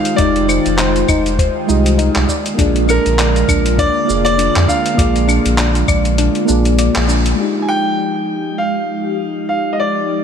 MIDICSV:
0, 0, Header, 1, 7, 480
1, 0, Start_track
1, 0, Tempo, 600000
1, 148, Time_signature, 4, 2, 24, 8
1, 8191, End_track
2, 0, Start_track
2, 0, Title_t, "Grand piano"
2, 0, Program_c, 0, 0
2, 0, Note_on_c, 0, 77, 84
2, 130, Note_on_c, 0, 74, 89
2, 145, Note_off_c, 0, 77, 0
2, 587, Note_off_c, 0, 74, 0
2, 614, Note_on_c, 0, 72, 77
2, 1069, Note_off_c, 0, 72, 0
2, 2318, Note_on_c, 0, 70, 92
2, 3032, Note_on_c, 0, 74, 105
2, 3054, Note_off_c, 0, 70, 0
2, 3385, Note_off_c, 0, 74, 0
2, 3397, Note_on_c, 0, 74, 116
2, 3746, Note_on_c, 0, 77, 100
2, 3755, Note_off_c, 0, 74, 0
2, 4195, Note_off_c, 0, 77, 0
2, 6098, Note_on_c, 0, 80, 66
2, 6147, Note_off_c, 0, 80, 0
2, 6148, Note_on_c, 0, 79, 106
2, 6866, Note_on_c, 0, 77, 84
2, 6889, Note_off_c, 0, 79, 0
2, 7579, Note_off_c, 0, 77, 0
2, 7591, Note_on_c, 0, 77, 74
2, 7782, Note_on_c, 0, 75, 61
2, 7786, Note_off_c, 0, 77, 0
2, 7829, Note_off_c, 0, 75, 0
2, 7837, Note_on_c, 0, 74, 76
2, 8191, Note_off_c, 0, 74, 0
2, 8191, End_track
3, 0, Start_track
3, 0, Title_t, "FM electric piano"
3, 0, Program_c, 1, 5
3, 0, Control_c, 1, 64, 127
3, 0, Note_on_c, 1, 56, 82
3, 0, Note_on_c, 1, 65, 74
3, 0, Note_on_c, 1, 67, 73
3, 0, Note_on_c, 1, 75, 88
3, 104, Note_off_c, 1, 56, 0
3, 116, Note_off_c, 1, 65, 0
3, 118, Note_on_c, 1, 56, 77
3, 124, Note_off_c, 1, 67, 0
3, 136, Note_off_c, 1, 75, 0
3, 139, Note_on_c, 1, 65, 73
3, 158, Note_on_c, 1, 67, 68
3, 176, Note_on_c, 1, 63, 91
3, 1308, Note_off_c, 1, 56, 0
3, 1319, Note_off_c, 1, 65, 0
3, 1328, Note_off_c, 1, 67, 0
3, 1335, Note_on_c, 1, 56, 82
3, 1337, Note_off_c, 1, 63, 0
3, 1348, Note_on_c, 1, 65, 75
3, 1357, Note_on_c, 1, 67, 75
3, 1366, Note_on_c, 1, 75, 92
3, 1809, Note_off_c, 1, 56, 0
3, 1815, Note_off_c, 1, 65, 0
3, 1820, Note_off_c, 1, 67, 0
3, 1824, Note_off_c, 1, 75, 0
3, 1839, Control_c, 1, 64, 0
3, 1956, Control_c, 1, 64, 127
3, 2034, Note_on_c, 1, 58, 79
3, 2055, Note_on_c, 1, 65, 74
3, 2076, Note_on_c, 1, 68, 71
3, 2095, Note_on_c, 1, 74, 90
3, 3226, Note_off_c, 1, 58, 0
3, 3235, Note_on_c, 1, 58, 78
3, 3236, Note_off_c, 1, 65, 0
3, 3247, Note_off_c, 1, 68, 0
3, 3256, Note_off_c, 1, 74, 0
3, 3256, Note_on_c, 1, 65, 72
3, 3277, Note_on_c, 1, 68, 75
3, 3296, Note_on_c, 1, 74, 87
3, 3944, Note_off_c, 1, 58, 0
3, 3954, Note_on_c, 1, 58, 87
3, 3957, Note_off_c, 1, 65, 0
3, 3967, Note_off_c, 1, 68, 0
3, 3975, Note_on_c, 1, 65, 75
3, 3977, Note_off_c, 1, 74, 0
3, 3997, Note_on_c, 1, 68, 76
3, 4017, Note_on_c, 1, 74, 93
3, 5146, Note_off_c, 1, 58, 0
3, 5156, Note_off_c, 1, 65, 0
3, 5158, Note_on_c, 1, 58, 80
3, 5167, Note_off_c, 1, 68, 0
3, 5177, Note_off_c, 1, 74, 0
3, 5178, Note_on_c, 1, 65, 75
3, 5200, Note_on_c, 1, 68, 69
3, 5218, Note_on_c, 1, 74, 84
3, 5868, Note_off_c, 1, 58, 0
3, 5877, Note_on_c, 1, 56, 65
3, 5878, Note_off_c, 1, 65, 0
3, 5889, Note_off_c, 1, 68, 0
3, 5896, Note_on_c, 1, 65, 57
3, 5898, Note_off_c, 1, 74, 0
3, 5918, Control_c, 1, 64, 0
3, 5921, Note_on_c, 1, 67, 60
3, 5940, Note_on_c, 1, 63, 73
3, 6056, Control_c, 1, 64, 127
3, 8191, Note_off_c, 1, 56, 0
3, 8191, Note_off_c, 1, 63, 0
3, 8191, Note_off_c, 1, 65, 0
3, 8191, Note_off_c, 1, 67, 0
3, 8191, End_track
4, 0, Start_track
4, 0, Title_t, "Synth pluck"
4, 0, Program_c, 2, 84
4, 150, Note_on_c, 2, 63, 107
4, 271, Note_off_c, 2, 63, 0
4, 387, Note_on_c, 2, 72, 80
4, 461, Note_off_c, 2, 72, 0
4, 627, Note_on_c, 2, 63, 98
4, 750, Note_off_c, 2, 63, 0
4, 870, Note_on_c, 2, 63, 102
4, 991, Note_off_c, 2, 63, 0
4, 1110, Note_on_c, 2, 72, 84
4, 1182, Note_off_c, 2, 72, 0
4, 1348, Note_on_c, 2, 63, 106
4, 1470, Note_off_c, 2, 63, 0
4, 1585, Note_on_c, 2, 63, 104
4, 1709, Note_off_c, 2, 63, 0
4, 1828, Note_on_c, 2, 74, 74
4, 1901, Note_off_c, 2, 74, 0
4, 2064, Note_on_c, 2, 62, 110
4, 2188, Note_off_c, 2, 62, 0
4, 2303, Note_on_c, 2, 62, 110
4, 2428, Note_off_c, 2, 62, 0
4, 2544, Note_on_c, 2, 74, 87
4, 2619, Note_off_c, 2, 74, 0
4, 2785, Note_on_c, 2, 62, 99
4, 2909, Note_off_c, 2, 62, 0
4, 3025, Note_on_c, 2, 62, 108
4, 3149, Note_off_c, 2, 62, 0
4, 3266, Note_on_c, 2, 74, 82
4, 3340, Note_off_c, 2, 74, 0
4, 3502, Note_on_c, 2, 62, 99
4, 3627, Note_off_c, 2, 62, 0
4, 3742, Note_on_c, 2, 62, 89
4, 3867, Note_off_c, 2, 62, 0
4, 3981, Note_on_c, 2, 74, 80
4, 4058, Note_off_c, 2, 74, 0
4, 4220, Note_on_c, 2, 62, 113
4, 4346, Note_off_c, 2, 62, 0
4, 4461, Note_on_c, 2, 62, 105
4, 4587, Note_off_c, 2, 62, 0
4, 4705, Note_on_c, 2, 74, 77
4, 4780, Note_off_c, 2, 74, 0
4, 4944, Note_on_c, 2, 62, 102
4, 5068, Note_off_c, 2, 62, 0
4, 5183, Note_on_c, 2, 62, 106
4, 5308, Note_off_c, 2, 62, 0
4, 5429, Note_on_c, 2, 74, 84
4, 5502, Note_off_c, 2, 74, 0
4, 5663, Note_on_c, 2, 62, 101
4, 5788, Note_off_c, 2, 62, 0
4, 8191, End_track
5, 0, Start_track
5, 0, Title_t, "Analog synth pad"
5, 0, Program_c, 3, 89
5, 0, Note_on_c, 3, 51, 83
5, 0, Note_on_c, 3, 56, 75
5, 0, Note_on_c, 3, 65, 75
5, 0, Note_on_c, 3, 79, 93
5, 1790, Note_off_c, 3, 79, 0
5, 1794, Note_off_c, 3, 51, 0
5, 1797, Note_off_c, 3, 65, 0
5, 1825, Note_on_c, 3, 50, 82
5, 1828, Note_on_c, 3, 58, 75
5, 1828, Note_on_c, 3, 65, 94
5, 5874, Note_off_c, 3, 50, 0
5, 5876, Note_off_c, 3, 58, 0
5, 5876, Note_off_c, 3, 65, 0
5, 5879, Note_off_c, 3, 56, 0
5, 5905, Note_on_c, 3, 53, 72
5, 5905, Note_on_c, 3, 63, 66
5, 5907, Note_on_c, 3, 56, 68
5, 5910, Note_on_c, 3, 67, 76
5, 8191, Note_off_c, 3, 53, 0
5, 8191, Note_off_c, 3, 56, 0
5, 8191, Note_off_c, 3, 63, 0
5, 8191, Note_off_c, 3, 67, 0
5, 8191, End_track
6, 0, Start_track
6, 0, Title_t, "Sub bass"
6, 0, Program_c, 4, 38
6, 147, Note_on_c, 4, 29, 101
6, 471, Note_off_c, 4, 29, 0
6, 525, Note_on_c, 4, 29, 75
6, 829, Note_off_c, 4, 29, 0
6, 867, Note_on_c, 4, 29, 107
6, 1191, Note_off_c, 4, 29, 0
6, 1351, Note_on_c, 4, 36, 82
6, 1673, Note_off_c, 4, 36, 0
6, 1725, Note_on_c, 4, 36, 99
6, 1803, Note_off_c, 4, 36, 0
6, 2065, Note_on_c, 4, 34, 101
6, 2390, Note_off_c, 4, 34, 0
6, 2446, Note_on_c, 4, 34, 76
6, 2749, Note_off_c, 4, 34, 0
6, 2784, Note_on_c, 4, 34, 99
6, 3110, Note_off_c, 4, 34, 0
6, 3272, Note_on_c, 4, 29, 79
6, 3594, Note_off_c, 4, 29, 0
6, 3644, Note_on_c, 4, 41, 100
6, 3723, Note_off_c, 4, 41, 0
6, 3985, Note_on_c, 4, 34, 104
6, 4310, Note_off_c, 4, 34, 0
6, 4361, Note_on_c, 4, 34, 77
6, 4666, Note_off_c, 4, 34, 0
6, 4705, Note_on_c, 4, 34, 110
6, 5030, Note_off_c, 4, 34, 0
6, 5190, Note_on_c, 4, 34, 109
6, 5513, Note_off_c, 4, 34, 0
6, 5566, Note_on_c, 4, 34, 102
6, 5869, Note_off_c, 4, 34, 0
6, 8191, End_track
7, 0, Start_track
7, 0, Title_t, "Drums"
7, 40, Note_on_c, 9, 42, 46
7, 42, Note_on_c, 9, 69, 36
7, 120, Note_off_c, 9, 42, 0
7, 122, Note_off_c, 9, 69, 0
7, 146, Note_on_c, 9, 36, 117
7, 147, Note_on_c, 9, 42, 57
7, 149, Note_on_c, 9, 69, 43
7, 226, Note_off_c, 9, 36, 0
7, 227, Note_off_c, 9, 42, 0
7, 229, Note_off_c, 9, 69, 0
7, 287, Note_on_c, 9, 42, 31
7, 367, Note_off_c, 9, 42, 0
7, 392, Note_on_c, 9, 75, 63
7, 394, Note_on_c, 9, 69, 69
7, 472, Note_off_c, 9, 75, 0
7, 474, Note_off_c, 9, 69, 0
7, 526, Note_on_c, 9, 42, 44
7, 528, Note_on_c, 9, 69, 34
7, 606, Note_off_c, 9, 42, 0
7, 608, Note_off_c, 9, 69, 0
7, 628, Note_on_c, 9, 39, 77
7, 628, Note_on_c, 9, 42, 55
7, 630, Note_on_c, 9, 69, 45
7, 708, Note_off_c, 9, 39, 0
7, 708, Note_off_c, 9, 42, 0
7, 710, Note_off_c, 9, 69, 0
7, 767, Note_on_c, 9, 42, 31
7, 769, Note_on_c, 9, 69, 31
7, 847, Note_off_c, 9, 42, 0
7, 849, Note_off_c, 9, 69, 0
7, 865, Note_on_c, 9, 36, 105
7, 868, Note_on_c, 9, 75, 77
7, 870, Note_on_c, 9, 69, 71
7, 945, Note_off_c, 9, 36, 0
7, 948, Note_off_c, 9, 75, 0
7, 950, Note_off_c, 9, 69, 0
7, 1009, Note_on_c, 9, 42, 41
7, 1011, Note_on_c, 9, 69, 32
7, 1089, Note_off_c, 9, 42, 0
7, 1091, Note_off_c, 9, 69, 0
7, 1105, Note_on_c, 9, 36, 122
7, 1113, Note_on_c, 9, 42, 55
7, 1115, Note_on_c, 9, 69, 45
7, 1185, Note_off_c, 9, 36, 0
7, 1193, Note_off_c, 9, 42, 0
7, 1195, Note_off_c, 9, 69, 0
7, 1354, Note_on_c, 9, 69, 76
7, 1434, Note_off_c, 9, 69, 0
7, 1488, Note_on_c, 9, 42, 45
7, 1490, Note_on_c, 9, 69, 33
7, 1568, Note_off_c, 9, 42, 0
7, 1570, Note_off_c, 9, 69, 0
7, 1591, Note_on_c, 9, 42, 57
7, 1593, Note_on_c, 9, 69, 42
7, 1671, Note_off_c, 9, 42, 0
7, 1673, Note_off_c, 9, 69, 0
7, 1725, Note_on_c, 9, 39, 79
7, 1727, Note_on_c, 9, 69, 30
7, 1805, Note_off_c, 9, 39, 0
7, 1807, Note_off_c, 9, 69, 0
7, 1825, Note_on_c, 9, 36, 60
7, 1834, Note_on_c, 9, 69, 81
7, 1905, Note_off_c, 9, 36, 0
7, 1914, Note_off_c, 9, 69, 0
7, 1966, Note_on_c, 9, 42, 45
7, 1968, Note_on_c, 9, 69, 36
7, 2046, Note_off_c, 9, 42, 0
7, 2048, Note_off_c, 9, 69, 0
7, 2065, Note_on_c, 9, 36, 118
7, 2070, Note_on_c, 9, 42, 56
7, 2073, Note_on_c, 9, 69, 45
7, 2145, Note_off_c, 9, 36, 0
7, 2150, Note_off_c, 9, 42, 0
7, 2153, Note_off_c, 9, 69, 0
7, 2206, Note_on_c, 9, 42, 33
7, 2286, Note_off_c, 9, 42, 0
7, 2310, Note_on_c, 9, 75, 62
7, 2313, Note_on_c, 9, 69, 73
7, 2390, Note_off_c, 9, 75, 0
7, 2393, Note_off_c, 9, 69, 0
7, 2447, Note_on_c, 9, 42, 46
7, 2449, Note_on_c, 9, 69, 30
7, 2527, Note_off_c, 9, 42, 0
7, 2529, Note_off_c, 9, 69, 0
7, 2551, Note_on_c, 9, 39, 77
7, 2551, Note_on_c, 9, 42, 62
7, 2553, Note_on_c, 9, 69, 42
7, 2631, Note_off_c, 9, 39, 0
7, 2631, Note_off_c, 9, 42, 0
7, 2633, Note_off_c, 9, 69, 0
7, 2689, Note_on_c, 9, 42, 33
7, 2691, Note_on_c, 9, 69, 32
7, 2769, Note_off_c, 9, 42, 0
7, 2771, Note_off_c, 9, 69, 0
7, 2783, Note_on_c, 9, 36, 103
7, 2790, Note_on_c, 9, 75, 75
7, 2792, Note_on_c, 9, 69, 77
7, 2863, Note_off_c, 9, 36, 0
7, 2870, Note_off_c, 9, 75, 0
7, 2872, Note_off_c, 9, 69, 0
7, 2925, Note_on_c, 9, 42, 45
7, 2928, Note_on_c, 9, 69, 33
7, 3005, Note_off_c, 9, 42, 0
7, 3008, Note_off_c, 9, 69, 0
7, 3023, Note_on_c, 9, 36, 114
7, 3032, Note_on_c, 9, 42, 56
7, 3034, Note_on_c, 9, 69, 42
7, 3103, Note_off_c, 9, 36, 0
7, 3112, Note_off_c, 9, 42, 0
7, 3114, Note_off_c, 9, 69, 0
7, 3276, Note_on_c, 9, 69, 79
7, 3356, Note_off_c, 9, 69, 0
7, 3409, Note_on_c, 9, 42, 47
7, 3411, Note_on_c, 9, 69, 32
7, 3489, Note_off_c, 9, 42, 0
7, 3491, Note_off_c, 9, 69, 0
7, 3512, Note_on_c, 9, 42, 60
7, 3514, Note_on_c, 9, 69, 41
7, 3592, Note_off_c, 9, 42, 0
7, 3594, Note_off_c, 9, 69, 0
7, 3650, Note_on_c, 9, 39, 78
7, 3652, Note_on_c, 9, 69, 30
7, 3730, Note_off_c, 9, 39, 0
7, 3732, Note_off_c, 9, 69, 0
7, 3742, Note_on_c, 9, 36, 61
7, 3755, Note_on_c, 9, 69, 80
7, 3822, Note_off_c, 9, 36, 0
7, 3835, Note_off_c, 9, 69, 0
7, 3886, Note_on_c, 9, 42, 50
7, 3888, Note_on_c, 9, 69, 36
7, 3966, Note_off_c, 9, 42, 0
7, 3968, Note_off_c, 9, 69, 0
7, 3981, Note_on_c, 9, 36, 120
7, 3991, Note_on_c, 9, 42, 60
7, 3993, Note_on_c, 9, 69, 44
7, 4061, Note_off_c, 9, 36, 0
7, 4071, Note_off_c, 9, 42, 0
7, 4073, Note_off_c, 9, 69, 0
7, 4125, Note_on_c, 9, 42, 34
7, 4128, Note_on_c, 9, 69, 30
7, 4205, Note_off_c, 9, 42, 0
7, 4208, Note_off_c, 9, 69, 0
7, 4229, Note_on_c, 9, 75, 62
7, 4231, Note_on_c, 9, 69, 70
7, 4309, Note_off_c, 9, 75, 0
7, 4311, Note_off_c, 9, 69, 0
7, 4365, Note_on_c, 9, 42, 48
7, 4367, Note_on_c, 9, 69, 32
7, 4445, Note_off_c, 9, 42, 0
7, 4447, Note_off_c, 9, 69, 0
7, 4465, Note_on_c, 9, 39, 81
7, 4465, Note_on_c, 9, 42, 60
7, 4467, Note_on_c, 9, 69, 44
7, 4545, Note_off_c, 9, 39, 0
7, 4545, Note_off_c, 9, 42, 0
7, 4547, Note_off_c, 9, 69, 0
7, 4602, Note_on_c, 9, 42, 35
7, 4604, Note_on_c, 9, 69, 31
7, 4682, Note_off_c, 9, 42, 0
7, 4684, Note_off_c, 9, 69, 0
7, 4702, Note_on_c, 9, 36, 96
7, 4706, Note_on_c, 9, 75, 78
7, 4708, Note_on_c, 9, 69, 72
7, 4782, Note_off_c, 9, 36, 0
7, 4786, Note_off_c, 9, 75, 0
7, 4788, Note_off_c, 9, 69, 0
7, 4841, Note_on_c, 9, 42, 45
7, 4843, Note_on_c, 9, 69, 32
7, 4921, Note_off_c, 9, 42, 0
7, 4923, Note_off_c, 9, 69, 0
7, 4946, Note_on_c, 9, 42, 61
7, 4948, Note_on_c, 9, 69, 44
7, 5026, Note_off_c, 9, 42, 0
7, 5028, Note_off_c, 9, 69, 0
7, 5081, Note_on_c, 9, 42, 34
7, 5161, Note_off_c, 9, 42, 0
7, 5187, Note_on_c, 9, 69, 78
7, 5267, Note_off_c, 9, 69, 0
7, 5323, Note_on_c, 9, 42, 47
7, 5325, Note_on_c, 9, 69, 31
7, 5403, Note_off_c, 9, 42, 0
7, 5405, Note_off_c, 9, 69, 0
7, 5429, Note_on_c, 9, 42, 59
7, 5431, Note_on_c, 9, 69, 46
7, 5509, Note_off_c, 9, 42, 0
7, 5511, Note_off_c, 9, 69, 0
7, 5565, Note_on_c, 9, 39, 86
7, 5565, Note_on_c, 9, 42, 33
7, 5567, Note_on_c, 9, 69, 32
7, 5645, Note_off_c, 9, 39, 0
7, 5645, Note_off_c, 9, 42, 0
7, 5647, Note_off_c, 9, 69, 0
7, 5673, Note_on_c, 9, 69, 78
7, 5753, Note_off_c, 9, 69, 0
7, 5806, Note_on_c, 9, 42, 49
7, 5808, Note_on_c, 9, 69, 33
7, 5886, Note_off_c, 9, 42, 0
7, 5888, Note_off_c, 9, 69, 0
7, 8191, End_track
0, 0, End_of_file